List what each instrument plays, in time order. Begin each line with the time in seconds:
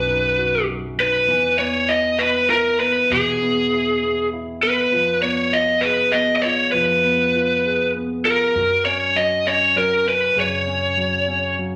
Already playing: upright bass B1, grand piano F#2 F#3 D#4 F#4, lead electric guitar B4
0.07 grand piano D#4
0.38 grand piano F#4
0.68 grand piano F#3
0.98 grand piano D#4, lead electric guitar B4
1.28 upright bass E2, grand piano E3
1.59 grand piano B3, lead electric guitar C#5
1.89 grand piano E4, lead electric guitar D#5
2.19 grand piano B3, lead electric guitar B4
2.50 grand piano E4, lead electric guitar A#4
2.80 grand piano B3, lead electric guitar B4
3.10 upright bass E2, grand piano B2, lead electric guitar G#4
3.42 grand piano B3
3.72 grand piano E4
4.02 grand piano B3
4.33 grand piano E4
4.63 grand piano B3, lead electric guitar B4
4.92 upright bass F2, grand piano F3
5.22 grand piano B3, lead electric guitar C#5
5.53 grand piano F4, lead electric guitar D#5
5.81 grand piano G#4, lead electric guitar B4
6.12 grand piano B3, lead electric guitar D#5
6.36 lead electric guitar D#5
6.42 grand piano F4, lead electric guitar C#5
6.72 upright bass F2, grand piano F3, lead electric guitar B4
7.04 grand piano B3
7.35 grand piano F4
7.65 grand piano G#4
7.95 grand piano B3
8.25 grand piano F4, lead electric guitar A#4
8.55 upright bass F#2, grand piano F#3
8.85 grand piano C#4, lead electric guitar C#5
9.15 grand piano F#3, lead electric guitar D#5
9.46 grand piano C#4, lead electric guitar C#5
9.76 grand piano F#3, lead electric guitar A#4
10.05 grand piano C#4, lead electric guitar B4
10.36 upright bass F#2, grand piano C#3
10.40 lead electric guitar C#5
10.67 grand piano C#4
10.97 grand piano F#3
11.28 grand piano C#4
11.59 grand piano F#3